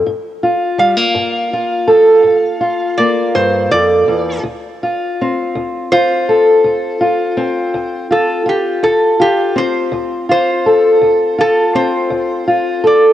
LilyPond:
<<
  \new Staff \with { instrumentName = "Resonator guitar played with a steel bar" } { \time 12/8 \key d \minor \tempo 4. = 55 r4 f''2. d''8 c''8 d''4 | r2 c''2. a'8 g'8 | a'8 g'8 c''8 r8 c''4. a'8 c''4. d''8 | }
  \new Staff \with { instrumentName = "Steel-string acoustic guitar" } { \time 12/8 \key d \minor << { r8 f'8 g16 bes8. f'8 a'4 f'8 bes2 | r8 f'8 c'4 f'8 a'4 f'8 c'4 f'8 f'8 | r8 f'8 c'4 f'8 a'4 f'8 c'4 f'8 a'8 | } \\ { g,4 r8 g,4 r8 g,4 r8 g,8 f,8 e,8 | d,4 r8 d,4 r8 d,4 r8 d,4 r8 | d,4 r8 d,4 r8 d,4 r8 d,4 r8 | } >> }
>>